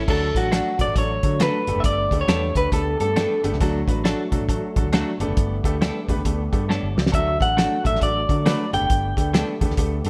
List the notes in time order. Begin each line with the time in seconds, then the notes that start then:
0.08 D2 F#3 A3 D4 F#4 A4, kick, crash
0.35 A1 F#3 A3 D4 F#4 A4, kick, closed hi-hat
0.52 F#3 A3 D4 F#4 A4, snare, closed hi-hat
0.79 B1 F#3 A3 D4 F#4 A4 D5, kick, closed hi-hat
0.87 A1
0.96 A1 F#3 A3 D4 F#4 A4 C#5, kick, closed hi-hat
1.23 D3 F#3 A3 D4 F#4 A4, kick, closed hi-hat
1.40 F#3 A3 D4 F#4 A4 B4, snare, closed hi-hat
1.67 G1 A3 B3 D4 G4 A4, closed hi-hat
1.76 F#1 E5
1.80 G1 E5, kick, closed hi-hat
1.84 D5
2.11 D2 A3 B3 D4 G4 A4, kick, closed hi-hat
2.20 C#5
2.28 E2 G3 A3 B3 D4 G4 A4, snare, closed hi-hat
2.55 D2 A3 B3 D4 G4 A4 B4, kick, closed hi-hat
2.72 D2 A3 B3 D4 G4 A4, kick, closed hi-hat
3.00 G2 A3 B3 D4 G4 A4, closed hi-hat
3.16 G3 A3 B3 D4 G4 A4, snare, closed hi-hat
3.44 G1 A3 B3 D4 G4 A4, closed hi-hat
3.52 C#2, snare
3.60 D2 F#3 A3 D4 F#4 A4, kick, closed hi-hat
3.87 A1 F#3 A3 D4 F#4 B4, kick, closed hi-hat
4.04 F#3 A3 D4 F#4 A4, snare, closed hi-hat
4.32 B1 F#3 A3 D4 F#4 A4, kick, closed hi-hat
4.41 A1
4.49 F#3 A3 D4 F#4 A4, kick, closed hi-hat
4.76 A1 F#3 A3 D4 F#4 A4, kick, closed hi-hat
4.84 D2
4.92 F#3 A3 D4 F#4 A4, snare, closed hi-hat
5.20 G1 A3 B3 D4 G4 A4, closed hi-hat
5.28 F#1
5.37 G1, kick, closed hi-hat
5.64 D2 A3 B3 D4 G4 A4, kick, closed hi-hat
5.81 G3 A3 B3 D4 G4 A4, snare, closed hi-hat
6.08 E2 A3 B3 D4 G4 B4, kick, closed hi-hat
6.16 D2
6.25 D2 A3 B3 D4 G4 A4, kick, closed hi-hat
6.52 G2 A3 B3 D4 G4 A4, kick, closed hi-hat
6.68 G3 B3 D4 A4 C#5 A5, snare
6.83 G1
6.96 C#2 F#4 D5, snare
7.06 snare
7.12 D2 F#3 A3 D4 F#4 A4 E5, kick, closed hi-hat
7.40 A1 F#3 A3 D4 F#4 A4 F#5, kick, closed hi-hat
7.56 F#3 A3 D4 F#4 A4, snare, closed hi-hat
7.84 B1 F#3 A3 D4 F#4 A4 E5, kick, closed hi-hat
7.92 A1, snare
8.01 A1 F#3 A3 D4 F#4 A4 D5, kick, closed hi-hat
8.29 D3 F#3 A3 D4 F#4 A4, kick, closed hi-hat
8.46 F#3 A3 D4 F#4 A4 B4, snare, closed hi-hat
8.73 G1 A3 B3 D4 G4 A4 G5, closed hi-hat
8.81 F#1
8.90 G1, kick, closed hi-hat
9.17 D2 A3 B3 D4 G4 A4, kick, closed hi-hat
9.34 G3 A3 B3 D4 G4 A4, snare, closed hi-hat
9.61 E2 A3 B3 D4 G4 A4, kick, closed hi-hat
9.69 D2, snare
9.77 D2 A3 B3 D4 G4 A4, kick, closed hi-hat
10.05 G2 A3 B3 D4 G4 A4, closed hi-hat